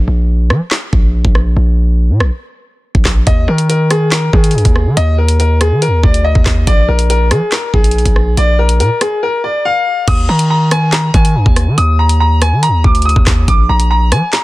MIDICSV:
0, 0, Header, 1, 4, 480
1, 0, Start_track
1, 0, Tempo, 425532
1, 1766, Time_signature, 4, 2, 24, 8
1, 16286, End_track
2, 0, Start_track
2, 0, Title_t, "Upright piano"
2, 0, Program_c, 0, 0
2, 3688, Note_on_c, 0, 75, 97
2, 3889, Note_off_c, 0, 75, 0
2, 3925, Note_on_c, 0, 70, 77
2, 4128, Note_off_c, 0, 70, 0
2, 4167, Note_on_c, 0, 70, 81
2, 4369, Note_off_c, 0, 70, 0
2, 4406, Note_on_c, 0, 68, 82
2, 4608, Note_off_c, 0, 68, 0
2, 4647, Note_on_c, 0, 70, 82
2, 4849, Note_off_c, 0, 70, 0
2, 4885, Note_on_c, 0, 68, 72
2, 5562, Note_off_c, 0, 68, 0
2, 5605, Note_on_c, 0, 75, 110
2, 5808, Note_off_c, 0, 75, 0
2, 5846, Note_on_c, 0, 70, 77
2, 6048, Note_off_c, 0, 70, 0
2, 6086, Note_on_c, 0, 70, 84
2, 6288, Note_off_c, 0, 70, 0
2, 6326, Note_on_c, 0, 68, 81
2, 6528, Note_off_c, 0, 68, 0
2, 6566, Note_on_c, 0, 70, 89
2, 6768, Note_off_c, 0, 70, 0
2, 6807, Note_on_c, 0, 74, 80
2, 7009, Note_off_c, 0, 74, 0
2, 7044, Note_on_c, 0, 75, 91
2, 7496, Note_off_c, 0, 75, 0
2, 7527, Note_on_c, 0, 74, 100
2, 7729, Note_off_c, 0, 74, 0
2, 7766, Note_on_c, 0, 70, 80
2, 7968, Note_off_c, 0, 70, 0
2, 8008, Note_on_c, 0, 70, 86
2, 8209, Note_off_c, 0, 70, 0
2, 8248, Note_on_c, 0, 68, 82
2, 8449, Note_off_c, 0, 68, 0
2, 8485, Note_on_c, 0, 70, 80
2, 8688, Note_off_c, 0, 70, 0
2, 8727, Note_on_c, 0, 68, 75
2, 9403, Note_off_c, 0, 68, 0
2, 9449, Note_on_c, 0, 74, 100
2, 9650, Note_off_c, 0, 74, 0
2, 9688, Note_on_c, 0, 70, 83
2, 9889, Note_off_c, 0, 70, 0
2, 9927, Note_on_c, 0, 70, 84
2, 10129, Note_off_c, 0, 70, 0
2, 10168, Note_on_c, 0, 68, 79
2, 10369, Note_off_c, 0, 68, 0
2, 10410, Note_on_c, 0, 70, 84
2, 10610, Note_off_c, 0, 70, 0
2, 10648, Note_on_c, 0, 74, 77
2, 10849, Note_off_c, 0, 74, 0
2, 10889, Note_on_c, 0, 77, 100
2, 11339, Note_off_c, 0, 77, 0
2, 11369, Note_on_c, 0, 87, 102
2, 11570, Note_off_c, 0, 87, 0
2, 11606, Note_on_c, 0, 82, 82
2, 11808, Note_off_c, 0, 82, 0
2, 11848, Note_on_c, 0, 82, 84
2, 12049, Note_off_c, 0, 82, 0
2, 12088, Note_on_c, 0, 80, 82
2, 12289, Note_off_c, 0, 80, 0
2, 12328, Note_on_c, 0, 82, 81
2, 12529, Note_off_c, 0, 82, 0
2, 12566, Note_on_c, 0, 80, 77
2, 13243, Note_off_c, 0, 80, 0
2, 13284, Note_on_c, 0, 87, 109
2, 13487, Note_off_c, 0, 87, 0
2, 13526, Note_on_c, 0, 82, 80
2, 13728, Note_off_c, 0, 82, 0
2, 13766, Note_on_c, 0, 82, 87
2, 13968, Note_off_c, 0, 82, 0
2, 14005, Note_on_c, 0, 80, 79
2, 14208, Note_off_c, 0, 80, 0
2, 14245, Note_on_c, 0, 82, 91
2, 14447, Note_off_c, 0, 82, 0
2, 14487, Note_on_c, 0, 86, 84
2, 14689, Note_off_c, 0, 86, 0
2, 14724, Note_on_c, 0, 87, 93
2, 15176, Note_off_c, 0, 87, 0
2, 15206, Note_on_c, 0, 86, 101
2, 15408, Note_off_c, 0, 86, 0
2, 15446, Note_on_c, 0, 82, 82
2, 15648, Note_off_c, 0, 82, 0
2, 15686, Note_on_c, 0, 82, 87
2, 15888, Note_off_c, 0, 82, 0
2, 15925, Note_on_c, 0, 80, 80
2, 16128, Note_off_c, 0, 80, 0
2, 16163, Note_on_c, 0, 82, 84
2, 16286, Note_off_c, 0, 82, 0
2, 16286, End_track
3, 0, Start_track
3, 0, Title_t, "808-style bass"
3, 0, Program_c, 1, 38
3, 86, Note_on_c, 1, 34, 107
3, 566, Note_on_c, 1, 53, 104
3, 583, Note_off_c, 1, 34, 0
3, 680, Note_off_c, 1, 53, 0
3, 1047, Note_on_c, 1, 34, 103
3, 1392, Note_off_c, 1, 34, 0
3, 1405, Note_on_c, 1, 34, 107
3, 1751, Note_off_c, 1, 34, 0
3, 1765, Note_on_c, 1, 34, 107
3, 2365, Note_on_c, 1, 46, 101
3, 2382, Note_off_c, 1, 34, 0
3, 2485, Note_on_c, 1, 34, 105
3, 2502, Note_off_c, 1, 46, 0
3, 2599, Note_off_c, 1, 34, 0
3, 3326, Note_on_c, 1, 34, 103
3, 3441, Note_off_c, 1, 34, 0
3, 3446, Note_on_c, 1, 34, 109
3, 3677, Note_off_c, 1, 34, 0
3, 3686, Note_on_c, 1, 39, 115
3, 3916, Note_off_c, 1, 39, 0
3, 3925, Note_on_c, 1, 51, 105
3, 4847, Note_off_c, 1, 51, 0
3, 4887, Note_on_c, 1, 51, 105
3, 5126, Note_on_c, 1, 42, 97
3, 5143, Note_off_c, 1, 51, 0
3, 5240, Note_off_c, 1, 42, 0
3, 5246, Note_on_c, 1, 39, 109
3, 5486, Note_on_c, 1, 51, 100
3, 5503, Note_off_c, 1, 39, 0
3, 5600, Note_off_c, 1, 51, 0
3, 5606, Note_on_c, 1, 39, 105
3, 6446, Note_on_c, 1, 51, 98
3, 6463, Note_off_c, 1, 39, 0
3, 6626, Note_on_c, 1, 39, 100
3, 6643, Note_off_c, 1, 51, 0
3, 6797, Note_off_c, 1, 39, 0
3, 6807, Note_on_c, 1, 38, 104
3, 7152, Note_off_c, 1, 38, 0
3, 7166, Note_on_c, 1, 39, 107
3, 7281, Note_off_c, 1, 39, 0
3, 7287, Note_on_c, 1, 39, 106
3, 7517, Note_off_c, 1, 39, 0
3, 7526, Note_on_c, 1, 34, 115
3, 7756, Note_off_c, 1, 34, 0
3, 7766, Note_on_c, 1, 34, 106
3, 8246, Note_on_c, 1, 53, 101
3, 8263, Note_off_c, 1, 34, 0
3, 8360, Note_off_c, 1, 53, 0
3, 8727, Note_on_c, 1, 34, 100
3, 9072, Note_off_c, 1, 34, 0
3, 9086, Note_on_c, 1, 34, 101
3, 9431, Note_off_c, 1, 34, 0
3, 9445, Note_on_c, 1, 34, 109
3, 9925, Note_on_c, 1, 46, 98
3, 9942, Note_off_c, 1, 34, 0
3, 10040, Note_off_c, 1, 46, 0
3, 11366, Note_on_c, 1, 39, 112
3, 11596, Note_off_c, 1, 39, 0
3, 11606, Note_on_c, 1, 51, 105
3, 12528, Note_off_c, 1, 51, 0
3, 12567, Note_on_c, 1, 51, 107
3, 12806, Note_on_c, 1, 42, 103
3, 12823, Note_off_c, 1, 51, 0
3, 12920, Note_off_c, 1, 42, 0
3, 12926, Note_on_c, 1, 39, 112
3, 13167, Note_on_c, 1, 51, 99
3, 13184, Note_off_c, 1, 39, 0
3, 13281, Note_off_c, 1, 51, 0
3, 13286, Note_on_c, 1, 39, 108
3, 14127, Note_on_c, 1, 51, 104
3, 14144, Note_off_c, 1, 39, 0
3, 14307, Note_on_c, 1, 39, 99
3, 14324, Note_off_c, 1, 51, 0
3, 14478, Note_off_c, 1, 39, 0
3, 14487, Note_on_c, 1, 38, 107
3, 14832, Note_off_c, 1, 38, 0
3, 14846, Note_on_c, 1, 39, 108
3, 14961, Note_off_c, 1, 39, 0
3, 14967, Note_on_c, 1, 39, 102
3, 15197, Note_off_c, 1, 39, 0
3, 15206, Note_on_c, 1, 34, 118
3, 15437, Note_off_c, 1, 34, 0
3, 15446, Note_on_c, 1, 34, 107
3, 15925, Note_on_c, 1, 53, 102
3, 15942, Note_off_c, 1, 34, 0
3, 16040, Note_off_c, 1, 53, 0
3, 16286, End_track
4, 0, Start_track
4, 0, Title_t, "Drums"
4, 567, Note_on_c, 9, 37, 100
4, 680, Note_off_c, 9, 37, 0
4, 805, Note_on_c, 9, 39, 87
4, 806, Note_on_c, 9, 38, 107
4, 918, Note_off_c, 9, 38, 0
4, 918, Note_off_c, 9, 39, 0
4, 1047, Note_on_c, 9, 36, 93
4, 1159, Note_off_c, 9, 36, 0
4, 1406, Note_on_c, 9, 36, 100
4, 1518, Note_off_c, 9, 36, 0
4, 1524, Note_on_c, 9, 37, 93
4, 1637, Note_off_c, 9, 37, 0
4, 2486, Note_on_c, 9, 37, 96
4, 2599, Note_off_c, 9, 37, 0
4, 3326, Note_on_c, 9, 36, 101
4, 3439, Note_off_c, 9, 36, 0
4, 3445, Note_on_c, 9, 37, 92
4, 3445, Note_on_c, 9, 38, 116
4, 3445, Note_on_c, 9, 39, 88
4, 3447, Note_on_c, 9, 36, 98
4, 3557, Note_off_c, 9, 39, 0
4, 3558, Note_off_c, 9, 37, 0
4, 3558, Note_off_c, 9, 38, 0
4, 3560, Note_off_c, 9, 36, 0
4, 3686, Note_on_c, 9, 36, 121
4, 3686, Note_on_c, 9, 42, 93
4, 3798, Note_off_c, 9, 42, 0
4, 3799, Note_off_c, 9, 36, 0
4, 4042, Note_on_c, 9, 42, 84
4, 4155, Note_off_c, 9, 42, 0
4, 4169, Note_on_c, 9, 42, 76
4, 4282, Note_off_c, 9, 42, 0
4, 4405, Note_on_c, 9, 42, 86
4, 4407, Note_on_c, 9, 37, 96
4, 4518, Note_off_c, 9, 42, 0
4, 4519, Note_off_c, 9, 37, 0
4, 4644, Note_on_c, 9, 42, 83
4, 4646, Note_on_c, 9, 38, 111
4, 4646, Note_on_c, 9, 39, 86
4, 4757, Note_off_c, 9, 42, 0
4, 4759, Note_off_c, 9, 38, 0
4, 4759, Note_off_c, 9, 39, 0
4, 4887, Note_on_c, 9, 36, 93
4, 5000, Note_off_c, 9, 36, 0
4, 5006, Note_on_c, 9, 42, 73
4, 5086, Note_off_c, 9, 42, 0
4, 5086, Note_on_c, 9, 42, 56
4, 5166, Note_off_c, 9, 42, 0
4, 5166, Note_on_c, 9, 42, 42
4, 5246, Note_off_c, 9, 42, 0
4, 5246, Note_on_c, 9, 36, 105
4, 5246, Note_on_c, 9, 42, 79
4, 5359, Note_off_c, 9, 36, 0
4, 5359, Note_off_c, 9, 42, 0
4, 5365, Note_on_c, 9, 37, 94
4, 5478, Note_off_c, 9, 37, 0
4, 5606, Note_on_c, 9, 42, 90
4, 5718, Note_off_c, 9, 42, 0
4, 5961, Note_on_c, 9, 42, 84
4, 6074, Note_off_c, 9, 42, 0
4, 6088, Note_on_c, 9, 42, 75
4, 6201, Note_off_c, 9, 42, 0
4, 6325, Note_on_c, 9, 42, 88
4, 6327, Note_on_c, 9, 37, 99
4, 6438, Note_off_c, 9, 42, 0
4, 6440, Note_off_c, 9, 37, 0
4, 6565, Note_on_c, 9, 42, 81
4, 6678, Note_off_c, 9, 42, 0
4, 6807, Note_on_c, 9, 36, 96
4, 6920, Note_off_c, 9, 36, 0
4, 6928, Note_on_c, 9, 42, 73
4, 7041, Note_off_c, 9, 42, 0
4, 7166, Note_on_c, 9, 36, 101
4, 7279, Note_off_c, 9, 36, 0
4, 7285, Note_on_c, 9, 37, 92
4, 7285, Note_on_c, 9, 38, 116
4, 7285, Note_on_c, 9, 39, 90
4, 7285, Note_on_c, 9, 42, 74
4, 7287, Note_on_c, 9, 36, 99
4, 7398, Note_off_c, 9, 37, 0
4, 7398, Note_off_c, 9, 38, 0
4, 7398, Note_off_c, 9, 39, 0
4, 7398, Note_off_c, 9, 42, 0
4, 7400, Note_off_c, 9, 36, 0
4, 7526, Note_on_c, 9, 36, 124
4, 7526, Note_on_c, 9, 42, 88
4, 7638, Note_off_c, 9, 42, 0
4, 7639, Note_off_c, 9, 36, 0
4, 7882, Note_on_c, 9, 42, 82
4, 7995, Note_off_c, 9, 42, 0
4, 8008, Note_on_c, 9, 42, 77
4, 8121, Note_off_c, 9, 42, 0
4, 8245, Note_on_c, 9, 42, 88
4, 8247, Note_on_c, 9, 37, 101
4, 8358, Note_off_c, 9, 42, 0
4, 8360, Note_off_c, 9, 37, 0
4, 8484, Note_on_c, 9, 42, 83
4, 8486, Note_on_c, 9, 38, 111
4, 8486, Note_on_c, 9, 39, 88
4, 8597, Note_off_c, 9, 42, 0
4, 8598, Note_off_c, 9, 39, 0
4, 8599, Note_off_c, 9, 38, 0
4, 8727, Note_on_c, 9, 36, 97
4, 8840, Note_off_c, 9, 36, 0
4, 8847, Note_on_c, 9, 42, 73
4, 8927, Note_off_c, 9, 42, 0
4, 8927, Note_on_c, 9, 42, 55
4, 9006, Note_off_c, 9, 42, 0
4, 9006, Note_on_c, 9, 42, 40
4, 9086, Note_off_c, 9, 42, 0
4, 9086, Note_on_c, 9, 36, 101
4, 9086, Note_on_c, 9, 42, 81
4, 9199, Note_off_c, 9, 36, 0
4, 9199, Note_off_c, 9, 42, 0
4, 9205, Note_on_c, 9, 37, 93
4, 9318, Note_off_c, 9, 37, 0
4, 9446, Note_on_c, 9, 42, 90
4, 9559, Note_off_c, 9, 42, 0
4, 9802, Note_on_c, 9, 42, 81
4, 9914, Note_off_c, 9, 42, 0
4, 9928, Note_on_c, 9, 42, 78
4, 10041, Note_off_c, 9, 42, 0
4, 10164, Note_on_c, 9, 42, 87
4, 10166, Note_on_c, 9, 37, 96
4, 10277, Note_off_c, 9, 42, 0
4, 10279, Note_off_c, 9, 37, 0
4, 11365, Note_on_c, 9, 42, 94
4, 11366, Note_on_c, 9, 36, 122
4, 11366, Note_on_c, 9, 49, 105
4, 11478, Note_off_c, 9, 42, 0
4, 11479, Note_off_c, 9, 36, 0
4, 11479, Note_off_c, 9, 49, 0
4, 11721, Note_on_c, 9, 42, 85
4, 11834, Note_off_c, 9, 42, 0
4, 12085, Note_on_c, 9, 42, 89
4, 12086, Note_on_c, 9, 37, 105
4, 12198, Note_off_c, 9, 42, 0
4, 12199, Note_off_c, 9, 37, 0
4, 12324, Note_on_c, 9, 42, 84
4, 12325, Note_on_c, 9, 38, 110
4, 12325, Note_on_c, 9, 39, 90
4, 12436, Note_off_c, 9, 42, 0
4, 12438, Note_off_c, 9, 38, 0
4, 12438, Note_off_c, 9, 39, 0
4, 12566, Note_on_c, 9, 42, 79
4, 12567, Note_on_c, 9, 36, 98
4, 12679, Note_off_c, 9, 36, 0
4, 12679, Note_off_c, 9, 42, 0
4, 12687, Note_on_c, 9, 42, 72
4, 12800, Note_off_c, 9, 42, 0
4, 12926, Note_on_c, 9, 36, 104
4, 13038, Note_off_c, 9, 36, 0
4, 13044, Note_on_c, 9, 42, 82
4, 13045, Note_on_c, 9, 37, 95
4, 13157, Note_off_c, 9, 37, 0
4, 13157, Note_off_c, 9, 42, 0
4, 13285, Note_on_c, 9, 42, 90
4, 13398, Note_off_c, 9, 42, 0
4, 13642, Note_on_c, 9, 42, 83
4, 13755, Note_off_c, 9, 42, 0
4, 14005, Note_on_c, 9, 42, 87
4, 14007, Note_on_c, 9, 37, 102
4, 14118, Note_off_c, 9, 42, 0
4, 14120, Note_off_c, 9, 37, 0
4, 14244, Note_on_c, 9, 42, 85
4, 14357, Note_off_c, 9, 42, 0
4, 14487, Note_on_c, 9, 36, 99
4, 14600, Note_off_c, 9, 36, 0
4, 14606, Note_on_c, 9, 42, 62
4, 14686, Note_off_c, 9, 42, 0
4, 14686, Note_on_c, 9, 42, 62
4, 14766, Note_off_c, 9, 42, 0
4, 14766, Note_on_c, 9, 42, 60
4, 14846, Note_on_c, 9, 36, 106
4, 14879, Note_off_c, 9, 42, 0
4, 14959, Note_off_c, 9, 36, 0
4, 14964, Note_on_c, 9, 42, 78
4, 14965, Note_on_c, 9, 37, 97
4, 14965, Note_on_c, 9, 38, 115
4, 14965, Note_on_c, 9, 39, 93
4, 14967, Note_on_c, 9, 36, 100
4, 15077, Note_off_c, 9, 39, 0
4, 15077, Note_off_c, 9, 42, 0
4, 15078, Note_off_c, 9, 37, 0
4, 15078, Note_off_c, 9, 38, 0
4, 15080, Note_off_c, 9, 36, 0
4, 15206, Note_on_c, 9, 36, 126
4, 15206, Note_on_c, 9, 42, 89
4, 15319, Note_off_c, 9, 36, 0
4, 15319, Note_off_c, 9, 42, 0
4, 15562, Note_on_c, 9, 42, 84
4, 15675, Note_off_c, 9, 42, 0
4, 15925, Note_on_c, 9, 42, 90
4, 15927, Note_on_c, 9, 37, 104
4, 16038, Note_off_c, 9, 42, 0
4, 16039, Note_off_c, 9, 37, 0
4, 16164, Note_on_c, 9, 42, 82
4, 16166, Note_on_c, 9, 38, 112
4, 16166, Note_on_c, 9, 39, 91
4, 16277, Note_off_c, 9, 42, 0
4, 16279, Note_off_c, 9, 38, 0
4, 16279, Note_off_c, 9, 39, 0
4, 16286, End_track
0, 0, End_of_file